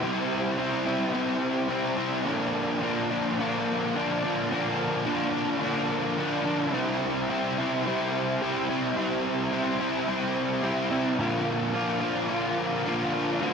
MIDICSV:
0, 0, Header, 1, 2, 480
1, 0, Start_track
1, 0, Tempo, 557621
1, 34, Time_signature, 4, 2, 24, 8
1, 11650, End_track
2, 0, Start_track
2, 0, Title_t, "Overdriven electric guitar"
2, 0, Program_c, 0, 29
2, 25, Note_on_c, 0, 48, 96
2, 29, Note_on_c, 0, 55, 98
2, 35, Note_on_c, 0, 60, 99
2, 40, Note_on_c, 0, 64, 119
2, 491, Note_off_c, 0, 48, 0
2, 497, Note_off_c, 0, 55, 0
2, 500, Note_off_c, 0, 60, 0
2, 501, Note_on_c, 0, 48, 68
2, 507, Note_off_c, 0, 64, 0
2, 508, Note_on_c, 0, 55, 78
2, 510, Note_on_c, 0, 60, 79
2, 517, Note_on_c, 0, 64, 78
2, 729, Note_off_c, 0, 64, 0
2, 738, Note_off_c, 0, 60, 0
2, 739, Note_on_c, 0, 64, 67
2, 747, Note_off_c, 0, 55, 0
2, 748, Note_on_c, 0, 60, 55
2, 758, Note_on_c, 0, 55, 60
2, 964, Note_off_c, 0, 48, 0
2, 973, Note_off_c, 0, 55, 0
2, 975, Note_off_c, 0, 60, 0
2, 975, Note_on_c, 0, 48, 87
2, 983, Note_on_c, 0, 55, 76
2, 985, Note_on_c, 0, 60, 79
2, 986, Note_off_c, 0, 64, 0
2, 996, Note_on_c, 0, 64, 85
2, 1439, Note_off_c, 0, 48, 0
2, 1447, Note_off_c, 0, 55, 0
2, 1449, Note_on_c, 0, 48, 80
2, 1452, Note_off_c, 0, 60, 0
2, 1453, Note_off_c, 0, 64, 0
2, 1457, Note_on_c, 0, 55, 85
2, 1462, Note_on_c, 0, 60, 90
2, 1463, Note_on_c, 0, 64, 78
2, 1685, Note_off_c, 0, 64, 0
2, 1695, Note_on_c, 0, 64, 74
2, 1697, Note_off_c, 0, 55, 0
2, 1697, Note_off_c, 0, 60, 0
2, 1707, Note_on_c, 0, 55, 52
2, 1707, Note_on_c, 0, 60, 60
2, 1928, Note_off_c, 0, 48, 0
2, 1931, Note_off_c, 0, 64, 0
2, 1936, Note_on_c, 0, 46, 91
2, 1937, Note_off_c, 0, 55, 0
2, 1937, Note_off_c, 0, 60, 0
2, 1942, Note_on_c, 0, 50, 103
2, 1948, Note_on_c, 0, 53, 104
2, 1957, Note_on_c, 0, 58, 99
2, 1958, Note_on_c, 0, 62, 114
2, 2408, Note_off_c, 0, 50, 0
2, 2418, Note_on_c, 0, 50, 73
2, 2427, Note_off_c, 0, 53, 0
2, 2430, Note_on_c, 0, 53, 86
2, 2433, Note_off_c, 0, 58, 0
2, 2436, Note_off_c, 0, 62, 0
2, 2437, Note_on_c, 0, 58, 82
2, 2440, Note_on_c, 0, 62, 87
2, 2668, Note_off_c, 0, 62, 0
2, 2672, Note_on_c, 0, 62, 66
2, 2680, Note_off_c, 0, 58, 0
2, 2684, Note_on_c, 0, 58, 63
2, 2685, Note_off_c, 0, 53, 0
2, 2688, Note_on_c, 0, 53, 60
2, 2904, Note_off_c, 0, 50, 0
2, 2914, Note_on_c, 0, 50, 73
2, 2917, Note_off_c, 0, 53, 0
2, 2920, Note_off_c, 0, 58, 0
2, 2921, Note_off_c, 0, 62, 0
2, 2927, Note_on_c, 0, 53, 77
2, 2930, Note_on_c, 0, 58, 76
2, 2931, Note_on_c, 0, 62, 85
2, 3385, Note_off_c, 0, 50, 0
2, 3396, Note_on_c, 0, 50, 77
2, 3399, Note_off_c, 0, 53, 0
2, 3402, Note_off_c, 0, 58, 0
2, 3409, Note_off_c, 0, 62, 0
2, 3409, Note_on_c, 0, 53, 86
2, 3412, Note_on_c, 0, 58, 79
2, 3420, Note_on_c, 0, 62, 100
2, 3637, Note_off_c, 0, 62, 0
2, 3647, Note_on_c, 0, 62, 59
2, 3650, Note_off_c, 0, 58, 0
2, 3652, Note_off_c, 0, 53, 0
2, 3660, Note_on_c, 0, 58, 56
2, 3662, Note_on_c, 0, 53, 52
2, 3876, Note_off_c, 0, 50, 0
2, 3882, Note_off_c, 0, 53, 0
2, 3886, Note_off_c, 0, 46, 0
2, 3888, Note_off_c, 0, 58, 0
2, 3889, Note_on_c, 0, 46, 90
2, 3892, Note_on_c, 0, 53, 94
2, 3893, Note_off_c, 0, 62, 0
2, 3894, Note_on_c, 0, 50, 99
2, 3898, Note_on_c, 0, 58, 86
2, 3904, Note_on_c, 0, 62, 100
2, 4331, Note_off_c, 0, 50, 0
2, 4339, Note_off_c, 0, 53, 0
2, 4342, Note_on_c, 0, 50, 72
2, 4346, Note_off_c, 0, 58, 0
2, 4349, Note_off_c, 0, 62, 0
2, 4349, Note_on_c, 0, 53, 87
2, 4356, Note_on_c, 0, 58, 90
2, 4359, Note_on_c, 0, 62, 83
2, 4577, Note_off_c, 0, 62, 0
2, 4587, Note_off_c, 0, 58, 0
2, 4587, Note_on_c, 0, 62, 70
2, 4597, Note_off_c, 0, 53, 0
2, 4597, Note_on_c, 0, 58, 63
2, 4603, Note_off_c, 0, 46, 0
2, 4607, Note_on_c, 0, 53, 54
2, 4813, Note_off_c, 0, 50, 0
2, 4821, Note_off_c, 0, 53, 0
2, 4823, Note_on_c, 0, 50, 74
2, 4830, Note_off_c, 0, 58, 0
2, 4831, Note_on_c, 0, 53, 79
2, 4833, Note_off_c, 0, 62, 0
2, 4840, Note_on_c, 0, 58, 85
2, 4843, Note_on_c, 0, 62, 83
2, 5298, Note_off_c, 0, 50, 0
2, 5304, Note_off_c, 0, 53, 0
2, 5309, Note_on_c, 0, 50, 75
2, 5311, Note_off_c, 0, 58, 0
2, 5314, Note_on_c, 0, 53, 74
2, 5317, Note_off_c, 0, 62, 0
2, 5322, Note_on_c, 0, 58, 94
2, 5327, Note_on_c, 0, 62, 89
2, 5544, Note_off_c, 0, 62, 0
2, 5549, Note_off_c, 0, 58, 0
2, 5554, Note_on_c, 0, 62, 61
2, 5559, Note_on_c, 0, 58, 58
2, 5560, Note_off_c, 0, 53, 0
2, 5570, Note_on_c, 0, 53, 50
2, 5778, Note_off_c, 0, 50, 0
2, 5781, Note_off_c, 0, 62, 0
2, 5783, Note_off_c, 0, 58, 0
2, 5785, Note_off_c, 0, 53, 0
2, 5786, Note_on_c, 0, 48, 86
2, 5789, Note_on_c, 0, 55, 97
2, 5795, Note_on_c, 0, 60, 116
2, 5802, Note_on_c, 0, 64, 111
2, 6270, Note_off_c, 0, 48, 0
2, 6273, Note_on_c, 0, 48, 84
2, 6276, Note_off_c, 0, 55, 0
2, 6279, Note_on_c, 0, 55, 73
2, 6281, Note_off_c, 0, 60, 0
2, 6284, Note_off_c, 0, 64, 0
2, 6285, Note_on_c, 0, 60, 80
2, 6288, Note_on_c, 0, 64, 74
2, 6520, Note_off_c, 0, 64, 0
2, 6523, Note_on_c, 0, 64, 62
2, 6530, Note_off_c, 0, 60, 0
2, 6534, Note_on_c, 0, 60, 64
2, 6542, Note_off_c, 0, 55, 0
2, 6545, Note_on_c, 0, 55, 64
2, 6756, Note_off_c, 0, 55, 0
2, 6759, Note_off_c, 0, 48, 0
2, 6763, Note_on_c, 0, 48, 72
2, 6764, Note_off_c, 0, 60, 0
2, 6767, Note_on_c, 0, 55, 76
2, 6770, Note_off_c, 0, 64, 0
2, 6775, Note_on_c, 0, 60, 84
2, 6780, Note_on_c, 0, 64, 82
2, 7232, Note_off_c, 0, 48, 0
2, 7237, Note_off_c, 0, 55, 0
2, 7243, Note_off_c, 0, 60, 0
2, 7243, Note_on_c, 0, 48, 76
2, 7245, Note_off_c, 0, 64, 0
2, 7247, Note_on_c, 0, 55, 85
2, 7254, Note_on_c, 0, 60, 76
2, 7255, Note_on_c, 0, 64, 87
2, 7472, Note_off_c, 0, 64, 0
2, 7476, Note_off_c, 0, 60, 0
2, 7482, Note_on_c, 0, 64, 63
2, 7486, Note_off_c, 0, 55, 0
2, 7487, Note_on_c, 0, 60, 64
2, 7496, Note_on_c, 0, 55, 54
2, 7704, Note_off_c, 0, 48, 0
2, 7710, Note_off_c, 0, 55, 0
2, 7714, Note_off_c, 0, 60, 0
2, 7714, Note_on_c, 0, 48, 85
2, 7721, Note_on_c, 0, 55, 96
2, 7723, Note_off_c, 0, 64, 0
2, 7724, Note_on_c, 0, 60, 102
2, 7733, Note_on_c, 0, 64, 105
2, 8183, Note_off_c, 0, 48, 0
2, 8187, Note_off_c, 0, 55, 0
2, 8193, Note_on_c, 0, 48, 75
2, 8197, Note_off_c, 0, 60, 0
2, 8198, Note_on_c, 0, 55, 82
2, 8202, Note_off_c, 0, 64, 0
2, 8208, Note_on_c, 0, 60, 83
2, 8212, Note_on_c, 0, 64, 77
2, 8425, Note_off_c, 0, 64, 0
2, 8432, Note_off_c, 0, 60, 0
2, 8436, Note_on_c, 0, 64, 82
2, 8439, Note_off_c, 0, 55, 0
2, 8442, Note_on_c, 0, 60, 61
2, 8450, Note_on_c, 0, 55, 56
2, 8661, Note_off_c, 0, 48, 0
2, 8664, Note_off_c, 0, 55, 0
2, 8671, Note_on_c, 0, 48, 76
2, 8672, Note_off_c, 0, 60, 0
2, 8675, Note_off_c, 0, 64, 0
2, 8675, Note_on_c, 0, 55, 82
2, 8682, Note_on_c, 0, 60, 86
2, 8686, Note_on_c, 0, 64, 87
2, 9136, Note_off_c, 0, 48, 0
2, 9142, Note_off_c, 0, 55, 0
2, 9145, Note_off_c, 0, 60, 0
2, 9146, Note_on_c, 0, 48, 77
2, 9152, Note_on_c, 0, 55, 90
2, 9155, Note_on_c, 0, 60, 85
2, 9158, Note_off_c, 0, 64, 0
2, 9168, Note_on_c, 0, 64, 88
2, 9372, Note_off_c, 0, 64, 0
2, 9382, Note_on_c, 0, 64, 69
2, 9387, Note_off_c, 0, 60, 0
2, 9389, Note_off_c, 0, 55, 0
2, 9397, Note_on_c, 0, 60, 58
2, 9400, Note_on_c, 0, 55, 53
2, 9613, Note_off_c, 0, 64, 0
2, 9615, Note_off_c, 0, 48, 0
2, 9621, Note_off_c, 0, 60, 0
2, 9622, Note_off_c, 0, 55, 0
2, 9631, Note_on_c, 0, 46, 94
2, 9636, Note_on_c, 0, 50, 99
2, 9640, Note_on_c, 0, 53, 92
2, 9647, Note_on_c, 0, 58, 93
2, 9650, Note_on_c, 0, 65, 112
2, 10093, Note_off_c, 0, 50, 0
2, 10103, Note_on_c, 0, 50, 71
2, 10105, Note_off_c, 0, 53, 0
2, 10111, Note_off_c, 0, 65, 0
2, 10112, Note_off_c, 0, 58, 0
2, 10115, Note_on_c, 0, 53, 82
2, 10122, Note_on_c, 0, 58, 91
2, 10122, Note_on_c, 0, 65, 93
2, 10329, Note_off_c, 0, 65, 0
2, 10336, Note_off_c, 0, 58, 0
2, 10339, Note_on_c, 0, 65, 70
2, 10346, Note_on_c, 0, 58, 60
2, 10349, Note_off_c, 0, 53, 0
2, 10352, Note_off_c, 0, 46, 0
2, 10359, Note_on_c, 0, 53, 62
2, 10568, Note_off_c, 0, 50, 0
2, 10575, Note_off_c, 0, 53, 0
2, 10578, Note_on_c, 0, 50, 69
2, 10581, Note_off_c, 0, 58, 0
2, 10585, Note_off_c, 0, 65, 0
2, 10585, Note_on_c, 0, 53, 73
2, 10592, Note_on_c, 0, 58, 81
2, 10596, Note_on_c, 0, 65, 87
2, 11061, Note_off_c, 0, 50, 0
2, 11068, Note_off_c, 0, 53, 0
2, 11071, Note_on_c, 0, 50, 79
2, 11074, Note_off_c, 0, 58, 0
2, 11075, Note_off_c, 0, 65, 0
2, 11079, Note_on_c, 0, 53, 82
2, 11084, Note_on_c, 0, 58, 82
2, 11086, Note_on_c, 0, 65, 82
2, 11295, Note_off_c, 0, 65, 0
2, 11302, Note_off_c, 0, 58, 0
2, 11305, Note_on_c, 0, 65, 67
2, 11312, Note_off_c, 0, 53, 0
2, 11313, Note_on_c, 0, 58, 58
2, 11322, Note_on_c, 0, 53, 56
2, 11534, Note_off_c, 0, 65, 0
2, 11535, Note_off_c, 0, 50, 0
2, 11538, Note_off_c, 0, 58, 0
2, 11542, Note_off_c, 0, 53, 0
2, 11545, Note_on_c, 0, 50, 101
2, 11549, Note_on_c, 0, 57, 100
2, 11556, Note_on_c, 0, 60, 112
2, 11560, Note_on_c, 0, 66, 104
2, 11650, Note_off_c, 0, 50, 0
2, 11650, Note_off_c, 0, 57, 0
2, 11650, Note_off_c, 0, 60, 0
2, 11650, Note_off_c, 0, 66, 0
2, 11650, End_track
0, 0, End_of_file